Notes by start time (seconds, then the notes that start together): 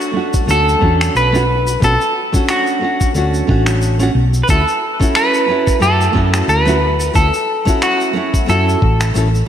Already playing: A3 C#4 D4 F#4
0.01 shaker
0.13 A3 C#4 D4 F#4
0.33 kick, shaker
0.47 D2 A3 C#4 D4 A4, shaker
0.51 F#4
0.68 shaker
0.80 E2 A3 C#4 D4 F#4, kick
1.01 finger snap, shaker
1.15 B1 B4, shaker
1.32 A3 C#4 D4 F#4, shaker
1.67 shaker
1.80 B1 A3 C#4 D4 F#4, kick, shaker
1.84 A4
2.01 shaker
2.32 A3 C#4 D4 F#4, kick, shaker
2.49 F#4, finger snap, shaker
2.67 shaker
2.81 A3 C#4 D4 F#4
3.01 kick, shaker
3.14 D2 A3 C#4 D4 F#4, shaker
3.34 shaker
3.47 A1 A3 C#4 D4 F#4, kick
3.66 finger snap, shaker
3.82 shaker
3.99 A3 C#4 D4 F#4, shaker
4.15 B1
4.34 shaker
4.43 B4
4.48 D2 A3 C#4 E4 F#4 A4, kick, shaker
4.68 shaker
4.99 A3 C#4 E4 F#4, kick, shaker
5.15 B4, finger snap, shaker
5.34 shaker
5.48 A3 C#4 E4 F#4
5.67 kick, shaker
5.80 F#2 A3 C#4 E4 F#4 A4, shaker
6.01 shaker
6.13 F#2 A3 C#4 E4 F#4, kick
6.34 finger snap, shaker
6.48 D2 B4, shaker
6.65 A3 C#4 E4 F#4, shaker
7.00 shaker
7.13 D2 A3 C#4 E4 F#4 A4, kick, shaker
7.34 shaker
7.65 A3 C#4 E4 F#4, kick, shaker
7.82 F#4, finger snap, shaker
8.00 shaker
8.13 A3 C#4 E4 F#4
8.34 kick, shaker
8.46 F#2 A3 C#4 E4 F#4 A4, shaker
8.69 shaker
8.82 A1, kick
9.01 finger snap, shaker
9.14 A1 A3 C#4 E4 A4, shaker
9.35 shaker